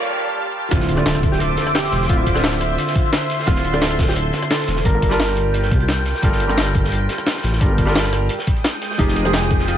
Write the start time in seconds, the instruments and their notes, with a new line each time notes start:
Already playing: felt piano G3 F4 A4 A#4, analog synth pad A#3 G4 F5 A5
0.70 detuned saw bass D1, felt piano D3 C4 E4 F4, clean electric guitar F4, analog synth pad C5 E5 D6, kick, closed hi-hat, impact
0.80 snare
0.89 closed hi-hat
0.96 felt piano D3 C4 E4, clean electric guitar D5, cross-stick, high bongo
1.00 felt piano F4
1.06 clean electric guitar A4, snare, closed hi-hat
1.15 cross-stick, closed hi-hat
1.23 kick, closed hi-hat, high bongo
1.32 clean electric guitar G4, snare
1.40 detuned saw bass D1, clean electric guitar A4, closed hi-hat
1.57 snare, closed hi-hat, high bongo
1.67 cross-stick
1.75 clean electric guitar G4, snare, closed hi-hat, open hi-hat
1.84 snare
1.92 detuned saw bass E1, snare, closed hi-hat
2.02 snare
2.08 detuned saw bass D1, felt piano D3 C4 E4 F4, clean electric guitar F4, kick, closed hi-hat
2.17 clean electric guitar E4, high bongo
2.23 clean electric guitar F4, kick, closed hi-hat
2.34 felt piano D3 C4 E5, cross-stick, snare, high bongo
2.38 felt piano F4
2.44 snare, closed hi-hat
2.53 cross-stick, snare
2.61 cross-stick, closed hi-hat
2.78 analog synth pad C6, closed hi-hat
2.87 snare
2.96 kick, closed hi-hat
3.05 closed hi-hat
3.13 snare, closed hi-hat
3.30 snare, closed hi-hat
3.40 snare
3.46 detuned saw bass D1, felt piano D3 C4 E4 F4, clean electric guitar F4, kick, closed hi-hat
3.56 snare
3.64 closed hi-hat
3.71 felt piano D3 C4 E4, clean electric guitar D5, cross-stick, high bongo
3.76 felt piano F4
3.82 clean electric guitar A4, snare, closed hi-hat
3.90 cross-stick, closed hi-hat
3.99 kick, snare, closed hi-hat, high bongo
4.08 clean electric guitar G4, snare, closed hi-hat
4.16 detuned saw bass D1, clean electric guitar A4, closed hi-hat
4.33 snare, closed hi-hat, high bongo
4.43 cross-stick
4.50 clean electric guitar A4, snare, closed hi-hat, open hi-hat
4.60 snare
4.68 detuned saw bass E1, snare, closed hi-hat
4.76 snare
4.84 detuned saw bass G1, felt piano G3 F4 A4 A#4, clean electric guitar A#4, analog synth pad G5, kick, closed hi-hat
4.95 high bongo
5.02 kick, closed hi-hat
5.09 felt piano G3 F4 A5, cross-stick, snare, high bongo
5.13 felt piano A#4
5.20 snare, closed hi-hat
5.29 cross-stick, snare
5.37 closed hi-hat
5.54 closed hi-hat
5.63 snare
5.71 detuned saw bass C2, kick, closed hi-hat
5.80 closed hi-hat
5.88 snare, closed hi-hat
6.05 snare, closed hi-hat
6.15 snare
6.22 detuned saw bass G1, felt piano G3 F4 A4 A#4, kick, closed hi-hat
6.32 snare
6.40 closed hi-hat
6.47 felt piano G3 F4 A4, cross-stick, high bongo
6.51 felt piano A#4
6.58 snare, closed hi-hat
6.67 cross-stick, closed hi-hat
6.75 kick, closed hi-hat, high bongo
6.84 snare
6.92 detuned saw bass G1, closed hi-hat
7.09 snare, closed hi-hat, high bongo
7.18 cross-stick
7.27 snare, closed hi-hat, open hi-hat
7.36 snare
7.43 detuned saw bass A1, snare, closed hi-hat
7.53 snare
7.60 detuned saw bass G1, felt piano G3 F4 A4 A#4, kick, closed hi-hat
7.70 high bongo
7.78 kick, closed hi-hat
7.85 felt piano G3 F4 A4, cross-stick, snare, high bongo
7.89 felt piano A#4
7.95 snare, closed hi-hat
8.05 cross-stick, snare
8.13 cross-stick, closed hi-hat
8.29 analog synth pad G#3 G5 D#6, closed hi-hat
8.39 snare
8.47 kick, closed hi-hat
8.56 closed hi-hat
8.64 snare, closed hi-hat
8.81 snare, closed hi-hat
8.91 snare
8.98 detuned saw bass F1, felt piano F3 D#4 G4 G#4, clean electric guitar D#4, kick, closed hi-hat
9.08 snare
9.16 closed hi-hat
9.23 felt piano F3 D#4 G5, clean electric guitar C5, cross-stick, high bongo
9.27 felt piano G#4
9.33 clean electric guitar G#4, snare, closed hi-hat
9.43 cross-stick, closed hi-hat
9.50 kick, closed hi-hat, high bongo
9.60 snare
9.68 detuned saw bass F1, clean electric guitar F4, closed hi-hat